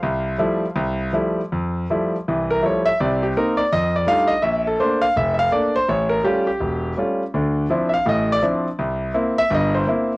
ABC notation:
X:1
M:4/4
L:1/8
Q:"Swing" 1/4=165
K:F
V:1 name="Grand piano"
[Acf]6 z2 | z4 z B _d e | d G B d _e d f e | e A c f e [ef] d c |
^c B G G3 z2 | z3 [ef] _e d z2 | z3 e _e c z2 |]
V:2 name="Grand piano"
C,,2 [F,G,A,E] z C,,2 [F,G,A,E] z | F,,2 [F,G,A,E] z [C,,E,]2 [F,G,A,E] z | [C,,C,]2 [B,C_E] z F,,2 [G,A,DEF] z | B,,,2 [A,B,D] z F,,,2 [A,B,D] z |
A,,,2 [G,A,^CF] z E,,,2 [G,A,CF] z | [D,,D,]2 [F,CDE] z [A,,,A,,]2 [F,CDE] z | C,,2 [B,CE] z [G,,,G,,]2 [B,CE] z |]